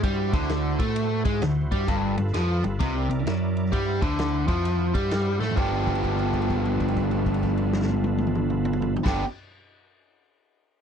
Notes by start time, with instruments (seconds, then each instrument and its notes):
0.02 picked electric bass G2, overdriven electric guitar G3, tonewheel organ E4 F#4 C5, kick, ride
0.33 picked electric bass D2, overdriven electric guitar D3, kick, ride
0.42 snare
0.49 snare, ride
0.79 picked electric bass A2, overdriven electric guitar A3, kick, ride
0.96 ride
1.25 picked electric bass G#2, overdriven electric guitar G#3, kick, ride
1.42 picked electric bass D2, overdriven electric guitar D3, snare, ride
1.71 picked electric bass G2, overdriven electric guitar G3, kick, ride
1.87 picked electric bass G1, overdriven electric guitar G2, tonewheel organ F4 A4 B4, kick, ride
2.18 picked electric bass G1, overdriven electric guitar G2, ride
2.27 snare
2.34 picked electric bass F2, overdriven electric guitar F3, snare, ride
2.64 picked electric bass G1, overdriven electric guitar G2, ride
2.79 picked electric bass C2, overdriven electric guitar C3, tonewheel organ F4 B4 D#5, kick, ride
2.96 tonewheel organ E4 A#4 D5
3.09 picked electric bass C2, overdriven electric guitar C3, ride
3.26 picked electric bass F#2, overdriven electric guitar F#3, snare, ride
3.57 ride
3.66 snare
3.72 picked electric bass G2, overdriven electric guitar G3, tonewheel organ E4 C5 F#5, kick, ride
4.01 picked electric bass D2, overdriven electric guitar D3, kick, ride
4.19 snare, ride
4.48 picked electric bass F2, overdriven electric guitar F3, kick, ride
4.65 ride
4.94 picked electric bass G2, overdriven electric guitar G3, kick, ride
5.11 snare, ride
5.40 picked electric bass A2, overdriven electric guitar A3, snare
5.49 floor tom
5.55 picked electric bass G1, overdriven electric guitar G2 D3 F3 B3 D4 G4, tonewheel organ F4 A4 B4, kick, crash
5.87 kick, crash
5.95 crash
6.04 kick, crash
6.19 crash
6.33 kick, crash
6.42 crash
6.50 kick, crash
6.65 crash
6.80 kick, crash
6.88 crash
6.96 kick, crash
7.11 crash
7.26 kick, crash
7.34 crash
7.43 kick, crash
7.57 crash
7.73 snare
7.82 snare
7.89 high tom
8.04 high tom
8.18 high tom
8.27 mid tom
8.35 mid tom
8.50 mid tom
8.65 mid tom
8.73 mid tom
8.82 floor tom
8.96 floor tom
9.04 picked electric bass G1, overdriven electric guitar G2 D3 F3 B3 D4, tonewheel organ F4 A4 B4, kick, snare, crash
9.08 overdriven electric guitar G4